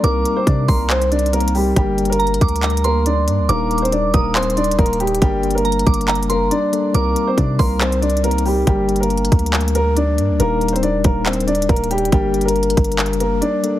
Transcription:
0.02 C2 G3 A#3 C4 D#4 A#4 D6, closed hi-hat
0.25 closed hi-hat
0.37 C4 C5
0.47 C3 D4 D5, kick, closed hi-hat
0.68 C2 A#3 A#4 C6, kick, open hi-hat
0.90 C4 C5, clap, closed hi-hat
1.02 closed hi-hat
1.11 D4 D5, closed hi-hat
1.19 closed hi-hat
1.26 closed hi-hat
1.32 G3 A#3 C4 D#4 A#4, closed hi-hat
1.40 closed hi-hat
1.48 closed hi-hat
1.55 G3 G4, open hi-hat
1.74 G1 G3 A#3 D4 G4 A#4, kick, closed hi-hat
1.98 closed hi-hat
2.05 closed hi-hat
2.10 A#3 A#4, closed hi-hat
2.19 A#5, closed hi-hat
2.27 closed hi-hat
2.34 closed hi-hat
2.41 D2 D6, kick, closed hi-hat
2.48 closed hi-hat
2.56 closed hi-hat
2.63 A#5, clap, closed hi-hat
2.70 closed hi-hat
2.77 closed hi-hat
2.84 A#3 A#4 C6, closed hi-hat
3.06 D4 D5, closed hi-hat
3.28 G2, closed hi-hat
3.39 D2
3.49 D#1 G3 A#3 D4 D#4 A#4 D6, closed hi-hat
3.71 closed hi-hat
3.78 closed hi-hat
3.82 C4 C5, closed hi-hat
3.92 D4 D5, closed hi-hat
4.14 D#1 A#3 A#4 D#6, kick, closed hi-hat
4.35 C4 C5 C6, clap, closed hi-hat
4.43 closed hi-hat
4.50 closed hi-hat
4.57 D4 D5, closed hi-hat
4.64 closed hi-hat
4.71 closed hi-hat
4.78 D#1 A#3 A#4, kick, closed hi-hat
4.86 closed hi-hat
4.93 closed hi-hat
5.00 G3 G4, closed hi-hat
5.07 closed hi-hat
5.15 closed hi-hat
5.21 G1 G3 A#3 D4 G4 A#4, kick, closed hi-hat
5.43 closed hi-hat
5.51 closed hi-hat
5.55 A#3 A#4, closed hi-hat
5.65 A#5, closed hi-hat
5.72 closed hi-hat
5.79 closed hi-hat
5.86 G1 D6, kick, closed hi-hat
5.94 closed hi-hat
6.01 closed hi-hat
6.08 A#5, clap, closed hi-hat
6.15 closed hi-hat
6.20 F#1, closed hi-hat
6.29 A#3 A#4 C6, closed hi-hat
6.51 D4 D5, closed hi-hat
6.72 G3 A#3 D4 A4, closed hi-hat
6.93 C2 G3 A#3 C4 D#4 A#4 D6, closed hi-hat
7.16 closed hi-hat
7.27 C4 C5
7.37 C3 D4 D5, kick, closed hi-hat
7.59 C2 A#3 A#4 C6, kick, open hi-hat
7.81 C4 C5, clap, closed hi-hat
7.92 closed hi-hat
8.02 D4 D5, closed hi-hat
8.10 closed hi-hat
8.17 closed hi-hat
8.23 G3 A#3 C4 D#4 A#4, closed hi-hat
8.31 closed hi-hat
8.38 closed hi-hat
8.46 G3 G4, open hi-hat
8.65 G1 G3 A#3 D4 G4 A#4, kick, closed hi-hat
8.89 closed hi-hat
8.96 closed hi-hat
9.00 A#3 A#4, closed hi-hat
9.10 closed hi-hat
9.17 closed hi-hat
9.25 closed hi-hat
9.32 D2, kick, closed hi-hat
9.39 closed hi-hat
9.46 closed hi-hat
9.53 clap, closed hi-hat
9.61 closed hi-hat
9.68 closed hi-hat
9.75 A#3 A#4, closed hi-hat
9.96 D4 D5, closed hi-hat
10.18 G2, closed hi-hat
10.30 D2
10.39 D#1 G3 A#3 D4 D#4 A#4, closed hi-hat
10.61 closed hi-hat
10.68 closed hi-hat
10.73 C4 C5, closed hi-hat
10.83 D4 D5, closed hi-hat
11.04 D#1 A#3 A#4, kick, closed hi-hat
11.26 C4 C5, clap, closed hi-hat
11.33 closed hi-hat
11.40 closed hi-hat
11.47 D4 D5, closed hi-hat
11.55 closed hi-hat
11.62 closed hi-hat
11.69 D#1 A#3 A#4, kick, closed hi-hat
11.76 closed hi-hat
11.84 closed hi-hat
11.91 G3 G4, closed hi-hat
11.98 closed hi-hat
12.05 closed hi-hat
12.11 G1 G3 A#3 D4 G4 A#4, kick, closed hi-hat
12.34 closed hi-hat
12.41 closed hi-hat
12.45 A#3 A#4, closed hi-hat
12.56 closed hi-hat
12.63 closed hi-hat
12.70 closed hi-hat
12.77 G1, kick, closed hi-hat
12.84 closed hi-hat
12.92 closed hi-hat
12.99 clap, closed hi-hat
13.06 closed hi-hat
13.10 F#1, closed hi-hat
13.20 A#3 A#4, closed hi-hat
13.41 D4 D5, closed hi-hat
13.63 G3 A#3 D4 A4, closed hi-hat

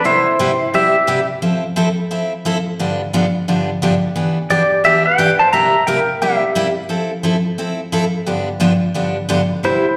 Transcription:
0.04 C3 G3 B3 E4 G4 C5
0.39 C3 G3 B3 E4 G4
0.74 C3 G3 B3 E4 G4 E5
1.07 C3 G3 B3 E4 G4
1.42 F3 C4 E4 A4
1.76 F3 C4 E4 A4
2.11 F3 C4 E4 A4
2.45 F3 C4 E4 A4
2.79 G2 D3 F3 B3 D4 G4
3.13 G2 D3 F3 B3 D4 G4
3.48 G2 D3 F3 B3 D4 G4
3.82 G2 D3 F3 B3 D4 G4
4.16 E3 B3 D4 G4
4.50 E3 B3 D4 G4 D5
4.84 E3 B3 D4 G4 E5
5.06 B4 G5
5.18 E3 B3 D4 G4
5.39 C5 A5
5.53 C3 G3 A#3 E4 G4 E5 A#5
5.87 C3 G3 A#3 E4 G4 A#4 G5
6.22 C3 G3 A#3 E4 G4 E5
6.55 C3 G3 A#3 E4 G4
6.89 F3 C4 E4 A4
7.23 F3 C4 E4 A4
7.58 F3 C4 E4 A4
7.92 F3 C4 E4 A4
8.26 G2 D3 F3 B3 D4 G4
8.60 G2 D3 F3 B3 D4 G4
8.94 G2 D3 F3 B3 D4 G4
9.29 G2 D3 F3 B3 D4 G4
9.63 C3 G3 B3 E4 G4 C5

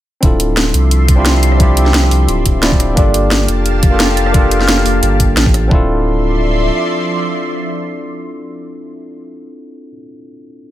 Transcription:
0.21 D1 F3 C4 D4 E4 F4 D5 E5 C6, kick, closed hi-hat
0.25 A4
0.40 closed hi-hat
0.57 snare, closed hi-hat
0.74 C2, closed hi-hat
0.91 closed hi-hat
1.08 kick, closed hi-hat
1.15 C4 D4 E4 F4
1.20 G4
1.26 snare, closed hi-hat
1.43 closed hi-hat
1.52 cross-stick
1.58 C4 D4 E4 F4, kick, closed hi-hat
1.62 G4
1.77 closed hi-hat
1.86 snare
1.94 snare, closed hi-hat
2.03 cross-stick
2.11 C2, open hi-hat
2.29 D1, closed hi-hat
2.46 D1, kick, closed hi-hat
2.62 C4 D4 E4 F4 D5, snare, closed hi-hat
2.72 kick
2.80 cross-stick, closed hi-hat
2.95 G1 A#3 D4 F4 G4 D5 F5 A5, kick, closed hi-hat
2.99 A4
3.14 closed hi-hat
3.31 snare, closed hi-hat
3.48 F1, closed hi-hat
3.66 closed hi-hat
3.83 kick, closed hi-hat
3.90 A#3 D4 F4 G4
3.94 A4
4.00 snare, closed hi-hat
4.17 closed hi-hat
4.26 cross-stick
4.32 A#3 D4 F4 G4, kick, closed hi-hat
4.37 A4
4.51 closed hi-hat
4.61 snare
4.69 snare, closed hi-hat
4.78 cross-stick
4.86 F1, open hi-hat
5.03 G1, closed hi-hat
5.20 kick, closed hi-hat
5.37 A1, snare, closed hi-hat
5.46 kick
5.54 cross-stick, closed hi-hat
5.68 D1 F3 C4 D4 E4 D5 E5 C6, kick
5.73 F4 A4

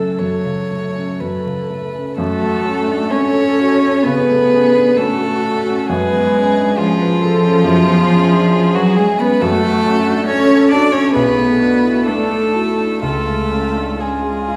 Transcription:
Already playing: F#2 C#3 F#3 A3 C#4 A4
0.19 F#2 C#5
0.45 C#3
0.71 A3
0.95 C#4
1.20 F#2 B4
1.46 C#3
1.70 A3
1.95 C#4
2.17 F#2 A3 F#4 A4
2.41 A3
2.65 C#4
2.88 D4
3.10 C#4 A4 C#5
3.35 A4
3.59 F#4
3.83 C#4
4.03 C#3 B3 G#4 B4
4.30 A3
4.51 C#4
4.74 D4
4.97 A3 C#4 F#4 A4
5.21 A4
5.44 F#4
5.67 C#4
5.89 F#2 G#3 G#4 B4
6.12 B3
6.35 C#4
6.58 D4
6.78 F3 C#4 F4 G#4
7.02 B4
7.21 G#4 A4
7.43 C#4
7.64 F#2 G#4
7.86 B3
8.09 C#4
8.31 D4
8.51 C#4
8.74 F#3 F#4 B4
8.96 G#3 G#4
9.18 B3 C#4 B4
9.41 F#2 A3 F#4 A4
9.63 A3
9.86 C#4
10.07 D4
10.27 C#4 A4 C#5
10.50 A4
10.71 D4 F#4 D5
10.92 C#4 C#5
11.14 B1 B3 G#4 B4
11.38 A3
11.60 D4 F#4
11.84 E4
12.05 A3 D4 A4
12.30 A4
12.53 E4 F#4
12.79 D4
13.02 C#2 A3 F4 A4
13.27 G#3
13.51 C#4
13.75 D4
13.98 G#3 C#4 F4 G#4
14.22 G#4
14.48 F4

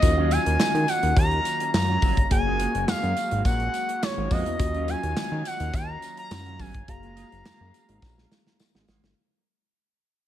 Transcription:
Already playing: D#5
0.02 D#2 D#3 F#3 A#3 C#4 F4 F#4 D#5 F5, kick, closed hi-hat, tambourine
0.17 F#3 C#4 F4
0.31 F#3 C#4 F4 G#5, closed hi-hat, tambourine
0.46 D#2, muted clean electric guitar stroke, closed hi-hat
0.59 D#3, muted clean electric guitar stroke, snare, clap, tambourine
0.74 D#3, muted clean electric guitar stroke, closed hi-hat
0.88 F#5, closed hi-hat, tambourine
1.03 D#2, muted clean electric guitar stroke, closed hi-hat
1.16 D#2 A#5, muted clean electric guitar stroke, kick, closed hi-hat, tambourine
1.31 muted clean electric guitar stroke, closed hi-hat
1.45 closed hi-hat, tambourine
1.60 muted clean electric guitar stroke, closed hi-hat
1.74 F#2 A#5, muted clean electric guitar stroke, snare, clap, tambourine
1.89 F#3 C#4 F4
2.02 G1 F#3 C#4 F#4, kick, open hi-hat, tambourine
2.17 muted clean electric guitar stroke, kick, closed hi-hat
2.30 F#1 F#3 G#3 A#3 F#4 G#4 G#5, muted clean electric guitar stroke, kick, closed hi-hat, tambourine
2.46 G#3 A#3 F4
2.59 G#3 A#3 F4, closed hi-hat
2.74 F#1, muted clean electric guitar stroke, closed hi-hat
2.88 F#2 F5, snare, clap, tambourine
3.03 F#2, muted clean electric guitar stroke, closed hi-hat
3.17 closed hi-hat, tambourine
3.31 G#1, muted clean electric guitar stroke, closed hi-hat
3.45 A#1 F#5, muted clean electric guitar stroke, kick, closed hi-hat, tambourine
3.60 muted clean electric guitar stroke, closed hi-hat
3.74 closed hi-hat, tambourine
3.89 muted clean electric guitar stroke, closed hi-hat
4.02 C#5, muted clean electric guitar stroke, snare, clap, tambourine
4.17 G#1 G#3 A#3 F4
4.30 F2 G#3 A#3 F#4 G#4 D#5 F5, kick, open hi-hat, tambourine
4.46 E2, muted clean electric guitar stroke, closed hi-hat
4.59 D#2 D#3 F#3 C#4 F4 F#4 D#5 F5, muted clean electric guitar stroke, kick, closed hi-hat, tambourine
4.74 F#3 C#4 F4, closed hi-hat
4.88 F#3 C#4 F4 G#5, closed hi-hat, tambourine
5.03 D#2, closed hi-hat
5.16 D#3, muted clean electric guitar stroke, snare, clap, tambourine
5.32 D#3, muted clean electric guitar stroke
5.45 F#5, closed hi-hat, tambourine
5.60 D#2, muted clean electric guitar stroke, closed hi-hat
5.74 D#2 A#5, muted clean electric guitar stroke, kick, closed hi-hat, tambourine
5.89 muted clean electric guitar stroke
6.02 closed hi-hat, tambourine
6.17 A#5, muted clean electric guitar stroke, closed hi-hat
6.31 F#2, snare, clap, tambourine
6.46 F#3 C#4 F4, closed hi-hat
6.59 G1 F#3 C#4 F#4 G#5, kick, open hi-hat, tambourine
6.74 muted clean electric guitar stroke, kick, closed hi-hat
6.88 F#1 C#3 G#3 A#3 F#4 G#4 F5 A#5, muted clean electric guitar stroke, kick, closed hi-hat
7.03 G#3 A#3 F4, closed hi-hat
7.16 G#3 A#3 F4, closed hi-hat, tambourine
7.32 F#1, closed hi-hat
7.45 F#2, snare, clap, tambourine
7.60 F#2, muted clean electric guitar stroke
7.74 closed hi-hat, tambourine
7.89 G#1, muted clean electric guitar stroke, closed hi-hat
8.02 A#1, muted clean electric guitar stroke, kick, snare, tambourine
8.17 muted clean electric guitar stroke, snare
8.31 snare, tambourine
8.46 muted clean electric guitar stroke, snare
8.60 snare, tambourine
8.75 G#1 G#3 A#3 F4, snare
8.88 G#1 G#3 A#3 F#4, snare, tambourine
9.03 G1, muted clean electric guitar stroke, snare

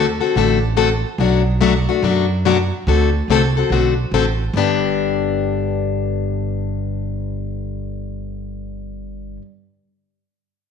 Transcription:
Already playing: D2
0.20 C4 F#4 A4
0.35 A1 D3 A3 C4 F#4 A4
0.77 D3 A3 C4 F#4 A4
1.18 B1 B2 F#3 A3 D4 F#4
1.61 B2 F#3 A3 D4 F#4
1.89 A3 D4 F#4
2.02 F#2 B2 F#3 A3 D4 F#4
2.45 B2 F#3 A3 D4 F#4
2.87 D2 D3 A3 C4 F#4 A4
3.28 C2 D3 A3 C4 F#4 A4
3.57 C4 F#4 A4
3.70 B1 D3 A3 C4 F#4 A4
4.12 A1 D3 A3 C4 F#4 A4
4.53 G1 G2 D3 B3 D4
4.58 G4

